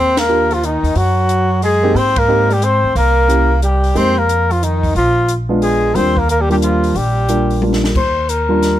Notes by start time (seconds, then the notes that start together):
Already playing: D#2 C4
0.00 C5
0.17 A#3 A#4, snare, ride
0.29 A#3 D4 F4 G4
0.51 F3 F4, open hi-hat
0.63 D#3 D#4, closed hi-hat
0.83 D#2, open hi-hat
0.95 F#2 F#3 F#4, open hi-hat
1.29 closed hi-hat
1.62 G#3 G#4, open hi-hat
1.83 A#3 C4 D#4 G4
1.95 G#2 C4 C5, open hi-hat
2.16 A#3 A#4, kick, ride
2.28 A#3 C4 D#4 G4
2.50 G3 G4, open hi-hat
2.62 C4 C5, closed hi-hat
2.84 D2
2.95 C2 A#3 A#4, open hi-hat
3.28 A#3 C#4 E4 G4, closed hi-hat
3.62 G3 G4, closed hi-hat
3.84 open hi-hat
3.94 F2 G#3 A#3 C4 D#4 G4 C5, open hi-hat
4.18 A#3 A#4
4.29 closed hi-hat
4.51 F3 F4, open hi-hat
4.62 D#3 D#4, closed hi-hat
4.83 kick, open hi-hat
4.95 A#1 F3 F4, open hi-hat
5.28 closed hi-hat
5.49 G#3 B3 D4 F4
5.62 G#3 G#4, open hi-hat
5.95 D#2 G3 A#3 C4 D4 F4 C5, open hi-hat
6.17 A#3 A#4, kick
6.29 A#3 A#4, closed hi-hat
6.41 G3 G4
6.50 G3 A#3 D4 F4 G4, open hi-hat
6.62 F3 F4, closed hi-hat
6.84 open hi-hat
6.94 A#1 G3 G4, open hi-hat
7.29 G3 A#3 D4 F4, closed hi-hat
7.50 open hi-hat
7.62 G3 A#3 D4 F4, high tom
7.73 snare
7.84 snare
7.95 D#2 C5, kick, crash
8.29 A#4, closed hi-hat
8.49 G3 A#3 D4 F4
8.62 snare, closed hi-hat